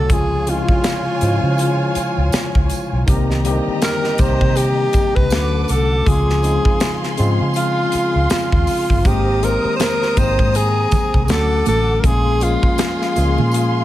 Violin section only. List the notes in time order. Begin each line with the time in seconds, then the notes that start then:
0.09 F4 C#5 G#5
3.08 G4 D#5 A#5
5.32 A4 F#5 D6
6.05 G#4 F5 C6
9.04 C5 A#5 D#6
11.29 A4 F#5 D6
12.04 G#4 F5 C6